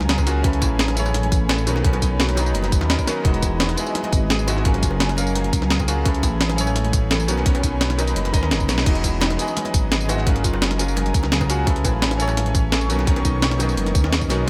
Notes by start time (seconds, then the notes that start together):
Already playing: C#2 F#3 A#3 C#4 F4 F#4 G#4 A#4 F5 G#5 A#5
0.00 snare, high bongo
0.09 G#4, snare, closed hi-hat
0.18 kick, tambourine, high bongo
0.26 A#3 C#4 F4 F#4 G#4, snare, closed hi-hat, tambourine
0.42 C#4 E4 G#4 A4 C#5, kick, closed hi-hat, high bongo
0.47 B4
0.53 closed hi-hat
0.62 A1 E4, kick, closed hi-hat, tambourine, high bongo
0.79 G#4, snare, closed hi-hat
0.88 snare, closed hi-hat, high bongo, high conga
0.95 A3 C#4 E4 G#4, closed hi-hat, tambourine
0.99 C#5
1.05 tambourine, high bongo
1.14 snare, closed hi-hat, high conga
1.23 closed hi-hat, high conga
1.32 A1, kick, closed hi-hat, tambourine, high bongo
1.49 A4, snare, closed hi-hat, high bongo
1.58 tambourine
1.66 B1 D#3 F#3 A#3 B3 C#4 F#4 D#5 A#5 B5, closed hi-hat, tambourine
1.76 snare, high bongo
1.82 D#3 F#3 A#3 B3 C#4, kick, closed hi-hat
1.87 C#4
1.93 closed hi-hat, high bongo
2.02 B1 D#4, kick, closed hi-hat, tambourine
2.20 F#4, snare, closed hi-hat, high bongo
2.28 snare, closed hi-hat, high conga
2.35 D#3 F#3 A#3 B3, closed hi-hat, tambourine, high bongo
2.40 D#4
2.46 tambourine
2.54 F#1, closed hi-hat, high conga
2.63 snare, closed hi-hat, high bongo, high conga
2.72 kick, closed hi-hat, tambourine
2.81 D#2, snare, high bongo
2.90 A#4, snare, closed hi-hat
2.99 kick, tambourine
3.06 D#3 F#3 A#3 B3 C#4 F#4, snare, closed hi-hat, tambourine, high bongo
3.22 E1 E3 F#3 G#3 B3 D#4 D#5 G#5, kick, closed hi-hat
3.27 F#4
3.34 closed hi-hat
3.42 E4, kick, closed hi-hat, tambourine, high bongo
3.60 F#4, snare, closed hi-hat, high bongo
3.68 snare, closed hi-hat, high conga
3.75 G#3 B3 E4 D#5, closed hi-hat, tambourine
3.80 G#4
3.86 tambourine, high bongo
3.95 snare, closed hi-hat, high conga
4.03 closed hi-hat, high bongo, high conga
4.13 G#1, kick, closed hi-hat, tambourine
4.30 G#4, snare, closed hi-hat, high bongo
4.39 tambourine
4.47 G#3 B3 D#4 E4 F#4, closed hi-hat, tambourine, high bongo
4.57 snare
4.63 F#3 A#3 C#4 F4 F5 A#5, kick, closed hi-hat
4.68 G#4
4.74 closed hi-hat, high bongo
4.83 F#1 F4, kick, closed hi-hat, tambourine
4.91 high bongo
5.00 F#4, snare, closed hi-hat
5.09 snare, closed hi-hat, high conga
5.16 F#3 A#3 C#4 F5, closed hi-hat, tambourine, high bongo
5.20 A#4
5.27 tambourine
5.35 closed hi-hat, high bongo, high conga
5.44 closed hi-hat, high conga
5.53 C#2, kick, closed hi-hat, tambourine
5.62 snare, high bongo
5.70 G#4, snare, closed hi-hat
5.79 kick, tambourine, high bongo
5.87 A#3 C#4 F4 F#4 G#4, snare, closed hi-hat, tambourine
6.03 C#4 E4 G#4 A4 C#5, kick, closed hi-hat, high bongo
6.08 B4
6.14 closed hi-hat
6.23 A1 E4, kick, closed hi-hat, tambourine, high bongo
6.41 G#4, snare, closed hi-hat
6.49 snare, closed hi-hat, high bongo, high conga
6.56 A3 C#4 E4 G#4, closed hi-hat, tambourine
6.61 C#5
6.67 tambourine, high bongo
6.76 snare, closed hi-hat, high conga
6.84 closed hi-hat, high conga
6.93 A1, kick, closed hi-hat, tambourine, high bongo
7.11 A4, snare, closed hi-hat, high bongo
7.20 tambourine
7.27 B1 D#3 F#3 A#3 B3 C#4 F#4 D#5 A#5 B5, closed hi-hat, tambourine
7.37 snare, high bongo
7.44 D#3 F#3 A#3 B3 C#4, kick, closed hi-hat
7.48 C#4
7.55 closed hi-hat, high bongo
7.63 B1 D#4, kick, closed hi-hat, tambourine
7.81 F#4, snare, closed hi-hat, high bongo
7.90 snare, closed hi-hat, high conga
7.97 D#3 F#3 A#3 B3 D#4, closed hi-hat, tambourine, high bongo
8.07 closed hi-hat, tambourine
8.16 F#1, closed hi-hat, high conga
8.25 snare, closed hi-hat, high bongo, high conga
8.31 D#3 F#3 A#3 B3 D#5, kick, closed hi-hat, tambourine
8.36 C#4
8.43 D#2, snare, high bongo
8.51 F#1 C#4, snare, closed hi-hat
8.60 kick, tambourine
8.68 B1 C#4, snare, closed hi-hat, tambourine, high bongo
8.78 snare
8.84 E1 E3 F#3 G#3 B3 D#4 D#5 G#5, kick, closed hi-hat, crash
8.89 F#4
8.95 closed hi-hat
9.04 E4, kick, closed hi-hat, tambourine, high bongo
9.21 D#4, snare, closed hi-hat, high bongo
9.30 snare, closed hi-hat, high conga
9.37 E3 G#3 B3 D#5, closed hi-hat, tambourine
9.41 G#4
9.48 tambourine, high bongo
9.57 snare, closed hi-hat, high conga
9.65 closed hi-hat, high bongo, high conga
9.74 G#1, kick, closed hi-hat, tambourine
9.92 G#4, snare, closed hi-hat, high bongo
10.01 tambourine
10.08 G#3 B3 D#4 E4 F#4, closed hi-hat, tambourine, high bongo
10.18 snare
10.24 F#3 A#3 C#4 F4 F5 G#5 A#5, kick, closed hi-hat
10.29 G#4
10.36 closed hi-hat, high bongo
10.44 F#1 F4, kick, closed hi-hat, tambourine
10.53 high bongo
10.62 C#4, snare, closed hi-hat
10.71 snare, closed hi-hat, high conga
10.77 F#3 A#3 C#4 F4, closed hi-hat, tambourine, high bongo
10.82 A#4
10.88 tambourine
10.96 closed hi-hat, high bongo, high conga
11.06 closed hi-hat, high conga
11.14 C#2, kick, closed hi-hat, tambourine
11.23 snare, high bongo
11.32 G#4, snare, closed hi-hat
11.41 kick, tambourine, high bongo
11.49 A#3 C#4 F4 F#4 G#4, snare, closed hi-hat, tambourine
11.65 C#4 E4 G#4 A4 C#5 C#6, kick, closed hi-hat, high bongo
11.69 B4
11.76 closed hi-hat
11.84 A1 E4, kick, closed hi-hat, tambourine, high bongo
12.02 C#4, snare, closed hi-hat
12.11 snare, closed hi-hat, high bongo, high conga
12.17 C#4 E4 G#4 A4, closed hi-hat, tambourine
12.22 C#5
12.28 tambourine, high bongo
12.37 snare, closed hi-hat, high conga
12.46 closed hi-hat, high conga
12.55 A1, kick, closed hi-hat, tambourine, high bongo
12.72 A4, snare, closed hi-hat, high bongo
12.81 tambourine
12.89 B1 D#3 F#3 A#3 B3 C#4 F#4 A#4 D#5, closed hi-hat, tambourine
12.99 snare, high bongo
13.05 D#3 F#3 A#3 B3 C#4, kick, closed hi-hat
13.10 C#4
13.16 closed hi-hat, high bongo
13.25 B1 D#4, kick, closed hi-hat, tambourine
13.42 C#4, snare, closed hi-hat, high bongo
13.51 snare, closed hi-hat, high conga
13.58 D#3 F#3 A#3 B3, closed hi-hat, tambourine, high bongo
13.62 D#4
13.69 tambourine
13.77 F#1, closed hi-hat, high conga
13.86 snare, closed hi-hat, high bongo, high conga
13.95 D#2 C#4, kick, closed hi-hat, tambourine
14.04 snare, high bongo
14.13 C#4, snare, closed hi-hat
14.21 kick, tambourine
14.29 B1 D#3 F#3 A#3 B3 C#4 F#4, snare, closed hi-hat, tambourine, high bongo
14.45 G#3 B3